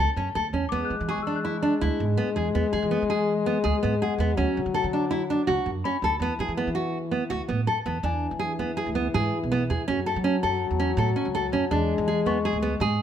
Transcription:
Already playing: A3
0.16 F#2 C#4
0.35 D2 A4
0.53 E2 C#4
0.69 E2 G#3 B3 D6
0.85 F#6
0.90 E3
1.00 E3
1.09 G#4 C#6
1.18 E3
1.22 E6
1.27 D4
1.36 F#6
1.45 E4
1.62 D4
1.81 D2 E4
2.00 G#2
2.17 B3
2.36 E2 G#4
2.55 E2 B3
2.73 E3 G#4
2.83 E3
2.91 B3
3.02 E3
3.10 G#4
3.46 B3
3.64 D2 G#4
3.83 G#2 B3
4.02 G#4 F#5
4.18 E2 B3
4.37 D2 F#3 C#4
4.57 D3
4.66 D3
4.74 A4
4.84 D3
4.93 D4
5.11 E4
5.30 D4
5.47 C#2 F#4
5.66 F#2
5.84 C#4 B5
6.02 D2 A4
6.20 E2 E3 B3
6.39 E3 G#4
6.48 E3
6.57 B3
6.67 E3
6.75 F#4
7.11 B3
7.30 D2 F#4
7.48 A2 B3
7.67 A4
7.86 E2 B3
8.03 E2 E3 D4 G#5
8.31 E3
8.39 G#4
8.59 E2 B3
8.77 G#4
8.86 D2
8.95 B3
9.14 G#2 G#4
9.43 B1
9.52 B3
9.70 E2 G#4
9.88 F#2 F#3 C#4
10.06 A4
10.16 F#3
10.24 C#4
10.43 F#2 A4
10.71 E2
10.80 C#4
10.97 A2 A4
11.16 C#4
11.25 C#2
11.35 A4
11.52 F#2 C#4
11.71 E2 G#3 D4
11.98 E3
12.08 G#4
12.26 E2 B3 C#6
12.45 G#4
12.53 D2
12.62 B3
12.80 G#2 G#4

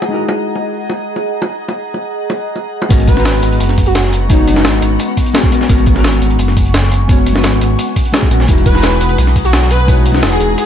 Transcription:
Already playing: F#4 G#4 D#5 F#5 A#5
0.02 high bongo
0.08 G#3 D#4 E4
0.13 F#4 A#4
0.29 high bongo
0.56 high bongo
0.90 high bongo
1.16 high bongo
1.42 high bongo
1.68 high bongo
1.94 high bongo
2.30 high bongo
2.56 high bongo
2.82 high bongo
2.89 G#1 G#3 B3 C#4 F#4 A#4 F#5 A#5 C#6, kick, closed hi-hat
3.00 closed hi-hat
3.07 B4, kick, closed hi-hat
3.14 G#3 B3 C#4, snare
3.18 F#4 A#5
3.25 snare, closed hi-hat
3.34 closed hi-hat
3.42 G#1, closed hi-hat
3.52 closed hi-hat
3.60 F#1, closed hi-hat
3.69 snare
3.78 kick, closed hi-hat
3.86 F#4, closed hi-hat
3.95 F#4, snare, closed hi-hat
4.04 snare
4.13 closed hi-hat
4.29 G#3 B3 C#4 D#4 F#4 C#5, kick, closed hi-hat
4.47 D#4, closed hi-hat
4.54 G#3 B3 C#4, snare
4.58 F#4 B4
4.65 G#1, snare, closed hi-hat
4.73 closed hi-hat
4.82 G#1, closed hi-hat
4.99 closed hi-hat
5.17 kick, closed hi-hat
5.26 closed hi-hat
5.33 G#3 B3 C#4 F#4 G#4, snare, closed hi-hat
5.43 kick, snare
5.51 G#3 B3 C#4 F#4 A#4, closed hi-hat
5.61 snare
5.68 G#1 G#3 B3 C#4 F#4 A#4 G#5, kick, closed hi-hat
5.78 closed hi-hat
5.86 kick, closed hi-hat
5.93 G#3 B3 C#4, snare
5.97 F#4 A#4
6.04 snare, closed hi-hat
6.13 closed hi-hat
6.22 G#1, closed hi-hat
6.30 closed hi-hat
6.39 F#1, closed hi-hat
6.48 snare
6.57 kick, closed hi-hat
6.65 closed hi-hat
6.74 snare, closed hi-hat
6.83 snare
6.92 closed hi-hat
7.08 G#3 B3 C#4 F#4 C#5, kick, closed hi-hat
7.26 closed hi-hat
7.33 G#3 B3 C#4, snare
7.37 F#4 B4
7.43 G#1, snare, closed hi-hat
7.52 closed hi-hat
7.61 G#1, closed hi-hat
7.79 closed hi-hat
7.96 kick, closed hi-hat
8.05 closed hi-hat
8.12 G#3 B3 C#4 F#4 G#4, snare, closed hi-hat
8.22 kick, snare
8.30 A#1 G#3 B3 C#4 F#4 A#4, closed hi-hat
8.40 snare
8.47 E1 G#3 D#4 E4 F#4 A#4 A#5 D#6, kick, closed hi-hat
8.58 closed hi-hat
8.66 B4, kick, closed hi-hat
8.72 G#3 D#4 E4, snare
8.76 F#4 A#5
8.83 snare, closed hi-hat
8.91 closed hi-hat
9.01 E1, closed hi-hat
9.09 closed hi-hat
9.18 B1, closed hi-hat
9.27 snare
9.36 kick, closed hi-hat
9.45 F#4, closed hi-hat
9.53 F#4, snare, closed hi-hat
9.62 snare
9.71 B4, closed hi-hat
9.87 G#3 D#4 E4 F#4 C#5, kick, closed hi-hat
10.06 closed hi-hat
10.12 G#3 D#4 E4, snare
10.16 F#4 B4
10.22 E1, snare, closed hi-hat
10.32 G#4, closed hi-hat
10.39 E1 G#4, closed hi-hat
10.58 G#4, closed hi-hat

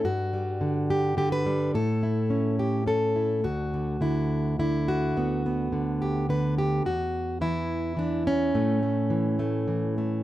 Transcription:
0.04 G2 F#4
0.33 G3
0.61 D3
0.90 G4
1.17 D3 G4
1.32 B4
1.46 G3
1.74 A2 A4
2.03 E4
2.30 C#4
2.59 G4
2.86 C#4 A4
3.16 E4
3.44 D2 F#4
3.74 D3
4.01 D3 E4
4.59 D3 E4
4.88 F#4
5.16 D2 B3
5.46 B3
5.72 D3
6.02 G4
6.29 D3 B4
6.58 G4
6.85 E2 F#4
7.41 E3 E4
7.97 E3 D4
8.27 C#4
8.54 A2 A3
8.83 A3
9.10 E3
9.39 A3
9.68 E3
9.98 A3

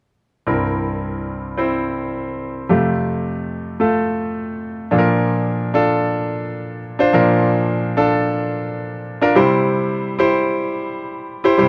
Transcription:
0.47 C2 G2 C4 E4 A#4
1.57 C4 E4 C5
2.69 F2 C3 A3 F4 G4
3.80 A3 F4 A4
4.91 A#2 F3 D4 F4 A4
4.98 A#4
5.74 D4 F4 A4
6.99 D4 F4 C5
7.13 A#2 F3 D4 F4 A#4
7.97 D4 F4 A4
9.21 D4 F4 A#4
9.35 C3 G3 E4 G4 C5
10.19 E4 G4 C5
11.44 E4 G4 C5
11.58 C3 G3 E4 G4 C5

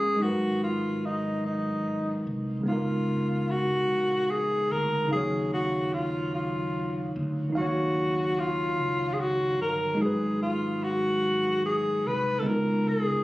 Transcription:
Already playing: A#1 A#2 G#3 C#4 F4 G#4 A#4
0.16 G#3 D#4
0.22 G#1 F#3 F#4 A#4
0.28 B4
0.64 F4
1.06 D#4
1.46 D#4
2.27 C2
2.61 C#3 G#3
2.66 C#2 B3 D#4 F4
2.70 A#4 F5
3.50 F#4
3.90 A#1
4.31 G#4
4.72 D2 A#4
5.05 C#3 D#4
5.11 D#2 F#3 G#4 F5
5.17 C#5
5.53 F#4
5.93 F4
6.35 F4
7.16 D2
7.50 D#3 D#4
7.55 D#2 F#3 F#4 F5
7.61 C#5
8.39 F4
8.79 C#2
9.13 G#4
9.20 F#4
9.60 G1 A#4
9.95 G#3 D#4
10.00 G#1 F#3 G#4
10.06 B4
10.42 F4
10.84 F#4
11.66 G#4
12.06 C2 B4
12.40 C#3 G#3 A4
12.45 C#2 B3 D#4 A#4
12.50 F4 A#4
12.89 G#4

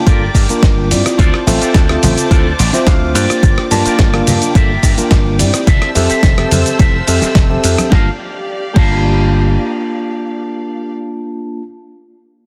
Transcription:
Already playing: A#3 G5 D6
0.06 G1 A#3 D4 F4 G4 A4 A#4 D5, kick, closed hi-hat, cabasa
0.35 G2, kick, open hi-hat, ride, cabasa
0.49 A#3 D4 F4 A#4, muted slap bass stroke, closed hi-hat, muted conga, cabasa
0.63 G1, kick, snare, closed hi-hat, cabasa
0.91 G2 C4 E4 F4 D5, open hi-hat, ride, cabasa
1.05 muted clean electric guitar stroke, cross-stick, closed hi-hat, cabasa
1.18 D2 F4 A4 C5 D5 A5 D6, kick, closed hi-hat, cabasa
1.34 cross-stick
1.47 A1 C4 F4 A4 E5, open hi-hat, ride, high conga, cabasa
1.61 F4 A4 C5 D5, closed hi-hat, cabasa
1.74 D2, kick, snare, closed hi-hat, cabasa
1.89 C4 F4 A4 E5, cross-stick, closed hi-hat
2.03 A1, open hi-hat, ride, muted conga, high conga, low conga, cabasa
2.18 closed hi-hat, cabasa
2.30 D2 F4 A4 C5 D5, kick, closed hi-hat, cabasa
2.59 A1 D5, open hi-hat, ride, cabasa
2.73 C4 F4 C5 E5, snare, closed hi-hat, muted conga, cabasa
2.87 D2 F5, kick, snare, closed hi-hat, cabasa
3.14 G2 A#3 D4 F4 G4 A#4 C5 D5 G5, open hi-hat, ride, cabasa
3.30 cross-stick, closed hi-hat, cabasa
3.43 G1, kick, closed hi-hat, cabasa
3.58 cross-stick
3.71 G2 A#3 D4 F4 A5, open hi-hat, ride, high conga, cabasa
3.85 F4 G4 A#4 D5, muted slap bass stroke, closed hi-hat, cabasa
3.99 G1, kick, snare, closed hi-hat, cabasa
4.13 A#3 D4 F4 A5, cross-stick, closed hi-hat
4.27 G2, open hi-hat, ride, high conga, low conga, cabasa
4.42 closed hi-hat, cabasa
4.55 G1 F4 G4 A4 A#4 E5, kick, closed hi-hat, cabasa
4.83 G2, kick, open hi-hat, ride, cabasa
4.97 A#3 D4 F4 A#4, muted slap bass stroke, closed hi-hat, muted conga, cabasa
5.11 G1, kick, snare, closed hi-hat, cabasa
5.39 G2 C4 E4 G4 D5, open hi-hat, ride, cabasa
5.53 muted clean electric guitar stroke, cross-stick, closed hi-hat, cabasa
5.67 F1 F4 A4 C5 E5 A5 E6, kick, closed hi-hat, cabasa
5.82 cross-stick, closed hi-hat
5.95 F2 C4 G4 A4 E5, open hi-hat, ride, high conga, cabasa
6.09 F4 A4 C5 E5, muted slap bass stroke, closed hi-hat, cabasa
6.23 F1, kick, snare, closed hi-hat, cabasa
6.38 C4 G4 A4 E5, cross-stick, closed hi-hat
6.51 F2, open hi-hat, ride, muted conga, high conga, low conga, cabasa
6.66 closed hi-hat, cabasa
6.78 F1 F4 A4 C5 E5, kick, closed hi-hat, cabasa
7.07 F2 C4 G4 A4 E5, open hi-hat, ride, cabasa
7.22 muted slap bass stroke, snare, closed hi-hat, muted conga, cabasa
7.35 F1, kick, snare, closed hi-hat, cabasa
7.49 C4 G4 A4 E5, high conga
7.64 F2, open hi-hat, ride, cabasa
7.77 muted clean electric guitar stroke, cross-stick, closed hi-hat, high conga, cabasa
7.89 G1 A#3 D4 F4 G4 A#4 D5 F5 A5, kick, snare
7.95 F5
8.73 G1 A#3 D4 F4 G4 A#4, kick, crash
8.77 F5 A5

